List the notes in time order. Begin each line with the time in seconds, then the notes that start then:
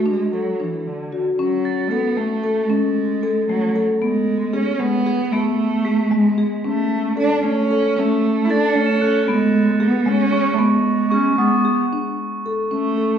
0.06 G#3 D4
0.33 F#3 A4
0.60 E3 D4
0.87 D3
1.12 F#4
1.37 F#3 C#4
1.65 A6
1.90 B3 A4
2.17 A3
2.44 A4
2.70 G#3 C#4
3.23 A4
3.49 F#3 A3
3.76 A4
4.02 G#3 B3
4.53 C#4 G#4
4.80 G#3 B3
5.06 G#4
5.32 A3 B3
5.85 G#4 B6
6.11 G#3
6.38 G#4
6.64 A3 C#4
7.17 D4 A4
7.43 A3 C#4
7.70 A4
7.97 A3 C#4
8.45 E4
8.50 D4 A4 A6
8.68 C#7
8.76 A3 C#4
8.86 E7
9.02 A4 F#6
9.28 G#3 B3
9.80 B3 G#4
10.06 G#3 C#4
10.32 G#4 C#6
10.54 A3
10.59 G#3 B3
11.10 C#4 G#4 C#6
11.38 G#3 B3
11.65 G#4
11.93 D4
12.46 A4
12.71 A3 C#4
12.97 A4